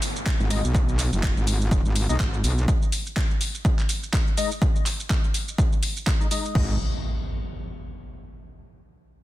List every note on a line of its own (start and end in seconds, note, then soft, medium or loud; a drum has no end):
0.00 open hi-hat loud
0.00 downlifter medium
0.00 shaker medium
0.16 shaker soft
0.26 kick loud
0.26 clap loud
0.26 shaker soft
0.40 0.62 G#1 medium
0.40 shaker soft
0.50 0.63 G#3 medium
0.50 0.63 D#4 medium
0.50 0.63 D#5 loud
0.50 open hi-hat loud
0.50 shaker medium
0.64 1.10 B1 medium
0.64 shaker soft
0.75 kick loud
0.75 shaker soft
0.89 shaker soft
0.99 clap soft
0.99 open hi-hat loud
0.99 shaker medium
1.13 1.34 F#1 medium
1.13 shaker soft
1.23 kick loud
1.23 clap loud
1.23 shaker soft
1.37 1.83 G#1 loud
1.37 shaker soft
1.47 open hi-hat loud
1.47 shaker medium
1.61 shaker soft
1.71 kick loud
1.71 shaker soft
1.85 2.07 G#1 medium
1.85 shaker soft
1.96 open hi-hat loud
1.96 shaker medium
2.09 2.18 B1 loud
2.09 2.15 G#3 medium
2.09 2.15 D#4 medium
2.09 2.15 D#5 medium
2.09 shaker soft
2.20 2.42 G#1 loud
2.20 kick loud
2.20 clap loud
2.20 shaker soft
2.34 shaker soft
2.44 2.66 B1 loud
2.44 open hi-hat loud
2.44 shaker medium
2.58 shaker soft
2.68 kick loud
2.68 shaker soft
2.82 shaker soft
2.92 open hi-hat loud
2.92 shaker medium
3.06 shaker soft
3.17 kick loud
3.17 clap loud
3.17 shaker soft
3.31 shaker soft
3.41 open hi-hat loud
3.41 shaker medium
3.55 shaker soft
3.65 kick loud
3.65 shaker soft
3.79 clap soft
3.79 shaker soft
3.89 open hi-hat loud
3.89 shaker medium
4.03 shaker soft
4.13 kick loud
4.13 clap loud
4.13 shaker soft
4.27 shaker soft
4.37 4.50 G#3 medium
4.37 4.50 D#4 medium
4.37 4.50 D#5 loud
4.37 open hi-hat loud
4.37 shaker medium
4.52 shaker soft
4.62 kick loud
4.62 shaker soft
4.76 shaker soft
4.86 clap soft
4.86 open hi-hat loud
4.86 shaker medium
5.00 shaker soft
5.10 kick loud
5.10 clap loud
5.10 shaker soft
5.24 shaker soft
5.34 open hi-hat loud
5.34 shaker medium
5.48 shaker soft
5.58 kick loud
5.58 shaker soft
5.72 shaker soft
5.83 open hi-hat loud
5.83 shaker medium
5.97 shaker soft
6.07 kick loud
6.07 clap loud
6.07 shaker soft
6.21 6.27 G#3 medium
6.21 6.27 D#4 medium
6.21 6.27 D#5 medium
6.21 shaker soft
6.31 6.54 G#3 medium
6.31 6.54 D#4 medium
6.31 6.54 D#5 medium
6.31 open hi-hat loud
6.31 shaker medium
6.45 shaker soft
6.55 6.78 G#1 medium
6.55 6.74 G#3 medium
6.55 6.74 D#4 medium
6.55 6.74 D#5 medium
6.55 kick loud
6.55 crash medium
6.55 impact medium